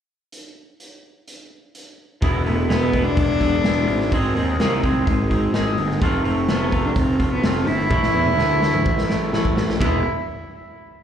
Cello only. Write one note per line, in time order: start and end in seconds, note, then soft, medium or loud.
2.46 2.72 A3 medium
2.70 3.05 B3 loud
3.03 4.14 D4 loud
4.12 4.59 C4 loud
4.60 4.82 A#3 medium
4.84 5.10 C4 medium
5.08 5.31 G#3 medium
5.32 5.75 G#3 medium
6.28 6.52 A3 medium
6.50 6.88 B3 medium
6.86 6.97 D4 medium
6.98 7.30 C4 medium
7.33 7.47 B3 medium
7.45 7.69 C4 medium
7.67 9.33 E4 loud
9.80 10.02 E4 medium